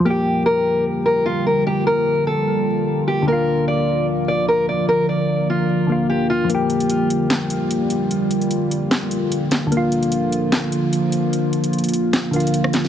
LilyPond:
<<
  \new Staff \with { instrumentName = "Steel-string acoustic guitar" } { \time 4/4 \key g \minor \tempo 4 = 149 g'4 bes'4 r8 bes'8 f'8 bes'8 | g'8 bes'4 a'2 g'8 | bes'4 d''4 r8 d''8 bes'8 d''8 | bes'8 d''4 f'4. g'8 f'8 |
r1 | r1 | r1 | r1 | }
  \new Staff \with { instrumentName = "Synth keys" } { \time 4/4 \key g \minor <f bes g'>1~ | <f bes g'>1 | <d bes f'>1~ | <d bes f'>2~ <d bes f'>8 <d bes f'>4. |
<f bes g'>1~ | <f bes g'>1 | <d bes f'>1~ | <d bes f'>2~ <d bes f'>8 <d bes f'>4. | }
  \new Staff \with { instrumentName = "Analog synth pad" } { \clef bass \time 4/4 \key g \minor << { <d bes f'>1~ | <d bes f'>1~ | <d bes f'>1~ | <d bes f'>1 |
<d bes f'>1~ | <d bes f'>1~ | <d bes f'>1~ | <d bes f'>1 | } \\ { g1~ | g1 | f1~ | f1 |
g1~ | g1 | f1~ | f1 | } >> }
  \new DrumStaff \with { instrumentName = "Drums" } \drummode { \time 4/4 r4 r4 r4 r4 | r4 r4 r4 r4 | r4 r4 r4 r4 | r4 r4 r4 r4 |
hh8 hh16 hh16 hh8 hh8 <hc hh sn>8 hh8 hh8 hh8 | hh8 <hh hho>16 hh16 hh8 hh8 <hc hh sn>8 hh8 hh8 <hc hh sn>8 | hh8 hh16 hh16 hh8 hh8 <hc hh sn>8 hh8 hh8 hh8 | hh8 <hh hho>16 hh16 hh32 hh32 hh32 hh32 hh8 \tuplet 3/2 { <hc hh sn>16 r16 r16 hh16 hh16 hh16 } hh16 ss16 <hc hh sn>16 sn16 | }
>>